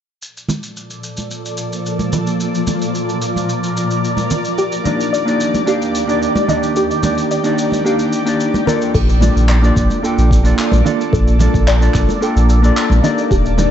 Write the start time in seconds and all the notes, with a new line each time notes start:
0.22 A#2 F3 A4 D5, shaker
0.37 shaker
0.49 high conga, low conga, shaker
0.63 shaker
0.77 shaker
0.90 shaker
1.03 shaker
1.17 high conga, shaker
1.31 shaker
1.46 shaker
1.57 shaker
1.73 shaker
1.86 shaker
1.99 high conga, shaker
2.13 low conga, shaker
2.27 shaker
2.40 A#4, shaker
2.55 shaker
2.67 high conga, low conga, shaker
2.82 shaker
2.95 shaker
3.09 shaker
3.22 shaker
3.36 high conga, shaker
3.49 shaker
3.64 shaker
3.77 shaker
3.91 shaker
4.04 shaker
4.17 high conga, shaker
4.31 D#2 D#3 G4, low conga, shaker
4.45 shaker
4.58 G4, shaker
4.72 shaker
4.84 A#3 D4 D#4 G4 D5, high conga, low conga, shaker
5.00 shaker
5.13 D5, shaker
5.25 A#3 D4 D#4 G4 D5, shaker
5.41 shaker
5.54 high conga, shaker
5.66 A#3 D4 D#4 G4 F5, shaker
5.82 shaker
5.95 shaker
6.07 A#3 D4 D#4 G4 D5, shaker
6.22 shaker
6.36 high conga, shaker
6.48 A#3 D4 D#4 G4 D5 D#5, low conga, shaker
6.63 shaker
6.76 G4, shaker
6.91 shaker
7.02 A#3 D4 D#4 G4 D5, high conga, low conga, shaker
7.18 shaker
7.31 D5, shaker
7.44 A#3 D4 D#4 G4 D5, shaker
7.58 shaker
7.72 high conga, shaker
7.84 A#3 D4 D#4 G4 F5, shaker
7.99 shaker
8.13 shaker
8.26 A#3 D4 D#4 G4 D5, shaker
8.40 shaker
8.54 high conga, shaker
8.66 A#3 D4 F4 A4 A#4 D5, low conga, shaker
8.81 shaker
8.94 A#1 A#3 A4 D5, kick, crash, shaker
9.09 shaker
9.20 A#3 D4 F4 A4 D5, high conga, low conga, shaker
9.36 A#1, shaker
9.49 D5, clap, shaker
9.62 A#3 D4 F4 A4 D5, shaker
9.76 A#1, kick, shaker
9.90 high conga, shaker
10.02 A#3 D4 F4 A4 G5, shaker
10.18 A#1, shaker
10.31 kick, shaker
10.43 A#3 D4 F4 A4 D5, shaker
10.59 clap, shaker
10.72 A#1, high conga, shaker
10.84 A#3 D4 F4 A4 D5 F5, low conga, shaker
11.01 shaker
11.13 A#1 A4, kick, shaker
11.27 shaker
11.39 A#3 D4 F4 A4 D5, high conga, low conga, shaker
11.54 A#1, kick, shaker
11.67 D5, clap, shaker
11.80 A#3 D4 F4 A4 D5, shaker
11.94 A#1, kick, clap, shaker
12.09 high conga, shaker
12.21 A#3 D4 F4 A4 G5, shaker
12.36 A#1, shaker
12.50 shaker
12.62 A#3 D4 F4 A4 D5, shaker
12.77 clap, shaker
12.90 A#1, high conga, shaker
13.02 A#3 D4 D#4 G4 D5 D#5, low conga, shaker
13.18 shaker
13.31 D#1 G4, kick, shaker
13.45 shaker
13.57 A#3 D4 D#4 G4 D5, high conga, low conga, shaker